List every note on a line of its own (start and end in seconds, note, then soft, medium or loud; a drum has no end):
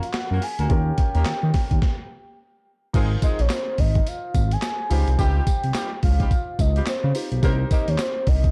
0.00 0.66 F3 medium
0.00 0.66 C#4 medium
0.00 0.66 G#4 medium
0.00 0.67 A#4 medium
0.00 0.44 F#5 loud
0.00 closed hi-hat medium
0.13 snare loud
0.13 clap medium
0.13 closed hi-hat medium
0.30 0.40 F#2 loud
0.30 0.43 A#3 medium
0.30 0.43 C#4 medium
0.30 0.43 F4 medium
0.30 0.43 F#4 medium
0.30 0.43 A#4 medium
0.42 0.62 G#5 loud
0.42 open hi-hat medium
0.59 0.68 D2 medium
0.59 0.71 A#3 medium
0.59 0.71 C#4 medium
0.59 0.71 F4 medium
0.59 0.71 F#4 medium
0.59 0.71 A#4 medium
0.59 2.39 G5 loud
0.59 closed hi-hat medium
0.69 0.92 D#2 loud
0.69 1.79 C#4 medium
0.69 1.80 F4 medium
0.69 1.80 G4 medium
0.69 1.81 A#4 medium
0.69 kick loud
0.69 closed hi-hat medium
0.98 kick loud
0.98 closed hi-hat medium
1.14 1.24 D#2 loud
1.14 1.27 A#3 medium
1.14 1.27 C#4 medium
1.14 1.27 D#4 medium
1.14 1.27 G4 medium
1.14 1.27 A#4 medium
1.14 closed hi-hat medium
1.25 1.33 D#3 medium
1.25 snare loud
1.25 clap loud
1.25 closed hi-hat medium
1.43 1.52 D#3 medium
1.54 kick medium
1.54 snare medium
1.54 open hi-hat medium
1.71 1.80 D#2 medium
1.71 kick medium
1.71 closed hi-hat soft
1.82 kick loud
1.82 snare medium
2.93 3.16 G#1 loud
2.93 3.12 G#3 loud
2.93 3.12 C4 loud
2.93 4.86 D#4 medium
2.93 3.12 D#4 medium
2.93 4.87 F4 medium
2.93 3.12 F4 medium
2.93 3.12 G#4 loud
2.93 4.87 A#4 medium
2.93 4.87 C5 medium
2.93 kick loud
2.93 closed hi-hat medium
2.93 crash loud
2.93 tambourine medium
3.22 3.40 G#3 medium
3.22 3.40 C4 medium
3.22 3.40 D#4 medium
3.22 3.40 F4 medium
3.22 3.40 G#4 medium
3.22 3.42 D#5 medium
3.22 kick loud
3.22 closed hi-hat medium
3.22 tambourine medium
3.39 3.48 A#1 medium
3.39 3.53 C#5 medium
3.39 closed hi-hat medium
3.49 3.81 C5 medium
3.49 snare loud
3.49 clap medium
3.49 closed hi-hat medium
3.49 tambourine loud
3.78 4.01 G#1 medium
3.78 4.09 D#5 loud
3.78 kick loud
3.78 open hi-hat medium
3.95 kick medium
3.95 closed hi-hat soft
4.07 4.54 F5 loud
4.07 closed hi-hat medium
4.07 tambourine medium
4.35 4.57 G#1 medium
4.35 kick medium
4.35 closed hi-hat medium
4.35 tambourine medium
4.51 5.19 G#5 loud
4.51 closed hi-hat medium
4.62 snare loud
4.62 clap medium
4.62 closed hi-hat medium
4.62 tambourine medium
4.90 5.04 C#2 loud
4.90 5.09 G3 medium
4.90 5.08 C4 medium
4.90 7.10 D#4 medium
4.90 5.08 D#4 medium
4.90 7.11 F4 medium
4.90 5.08 F4 medium
4.90 5.09 G4 medium
4.90 7.11 G4 medium
4.90 7.12 C5 medium
4.90 open hi-hat medium
4.90 tambourine medium
5.08 5.16 C2 medium
5.08 closed hi-hat medium
5.18 5.41 C#2 loud
5.18 5.45 G3 loud
5.18 5.45 C4 loud
5.18 5.45 D#4 medium
5.18 5.45 F4 medium
5.18 5.45 G4 loud
5.18 5.99 G5 loud
5.18 kick loud
5.18 closed hi-hat medium
5.18 tambourine medium
5.47 kick medium
5.47 closed hi-hat medium
5.47 tambourine medium
5.64 5.73 C2 medium
5.64 closed hi-hat medium
5.74 5.93 G3 medium
5.74 5.92 C4 medium
5.74 5.92 D#4 medium
5.74 5.93 F4 medium
5.74 5.93 G4 medium
5.74 snare loud
5.74 clap loud
5.74 closed hi-hat medium
5.74 tambourine medium
6.03 6.25 C#2 medium
6.03 6.62 F5 loud
6.03 kick loud
6.03 open hi-hat medium
6.20 6.32 G3 medium
6.20 6.32 C4 medium
6.20 6.32 D#4 medium
6.20 6.32 F4 medium
6.20 6.32 G4 medium
6.20 kick medium
6.20 closed hi-hat medium
6.31 kick medium
6.31 closed hi-hat medium
6.31 tambourine medium
6.59 6.81 C#2 medium
6.59 6.88 D#5 medium
6.59 kick medium
6.59 closed hi-hat medium
6.59 tambourine medium
6.76 6.88 G3 medium
6.76 6.88 C4 medium
6.76 6.88 D#4 medium
6.76 6.88 F4 medium
6.76 6.88 G4 medium
6.76 closed hi-hat medium
6.86 7.29 C5 medium
6.86 snare loud
6.86 clap medium
6.86 closed hi-hat medium
6.86 tambourine medium
7.04 7.13 C#3 loud
7.15 7.43 D#4 medium
7.15 7.43 F4 soft
7.15 7.41 G4 soft
7.15 7.43 C5 medium
7.15 open hi-hat medium
7.15 tambourine medium
7.32 7.40 B1 medium
7.32 closed hi-hat medium
7.42 7.65 C2 loud
7.42 7.61 A#3 loud
7.42 7.61 C4 loud
7.42 7.50 C#4 medium
7.42 7.61 D#4 medium
7.42 8.51 G4 medium
7.42 7.61 G4 medium
7.42 7.61 A#4 loud
7.42 8.51 A#4 medium
7.42 8.51 C5 medium
7.42 kick loud
7.42 closed hi-hat medium
7.42 tambourine medium
7.49 8.51 D#4 medium
7.71 7.89 A#3 medium
7.71 7.89 C4 medium
7.71 7.89 D#4 medium
7.71 7.89 G4 medium
7.71 7.89 A#4 medium
7.71 7.90 D#5 medium
7.71 kick loud
7.71 closed hi-hat medium
7.71 tambourine medium
7.88 7.97 D#2 medium
7.88 8.01 C#5 medium
7.88 closed hi-hat medium
7.98 8.30 C5 loud
7.98 snare loud
7.98 clap loud
7.98 closed hi-hat medium
7.98 tambourine medium
8.27 8.49 C2 medium
8.27 8.51 D#5 medium
8.27 kick loud
8.27 open hi-hat medium
8.44 kick medium
8.44 closed hi-hat medium